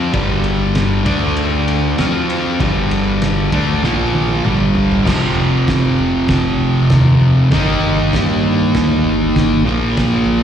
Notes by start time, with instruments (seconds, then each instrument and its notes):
Already playing: fingered electric bass F2, distorted electric guitar F3 C4 F4
0.13 fingered electric bass G1, distorted electric guitar G2 D3 G3, kick, ride
0.44 ride
0.75 snare, ride
1.05 fingered electric bass D2, distorted electric guitar D3 A3 D4, kick, ride
1.36 ride
1.68 ride
1.98 fingered electric bass F2, distorted electric guitar F3 C4 F4, snare, ride
2.30 ride
2.60 fingered electric bass G1, distorted electric guitar G2 D3 G3, kick, ride
2.91 ride
3.22 snare, ride
3.52 fingered electric bass D2, distorted electric guitar D3 A3 D4, kick, ride
3.82 fingered electric bass A#1, distorted electric guitar A#2 F3 A#3, snare
4.14 high tom
4.29 high tom
4.44 fingered electric bass G1, distorted electric guitar G2 D3 G3, mid tom
4.75 floor tom
4.92 floor tom
5.04 fingered electric bass F1, distorted electric guitar F2 C3 F3, kick, snare, crash
5.36 fingered electric bass F1
5.68 fingered electric bass F1, kick, snare, crash
5.98 fingered electric bass F1
6.28 fingered electric bass F1, kick, snare, crash
6.60 fingered electric bass F1
6.90 fingered electric bass D#2, kick, snare, crash
7.20 fingered electric bass F2
7.51 fingered electric bass G1, distorted electric guitar D#3 A#3 D#4, kick, snare, crash
7.81 fingered electric bass G1
8.13 fingered electric bass G2, kick, snare, crash
8.75 fingered electric bass D2, kick, snare, crash
9.04 fingered electric bass G1
9.36 fingered electric bass G1, kick, snare, crash
9.65 fingered electric bass A#1, distorted electric guitar A#2 F3 A#3
9.97 fingered electric bass A#1, kick, snare, crash
10.25 fingered electric bass A#1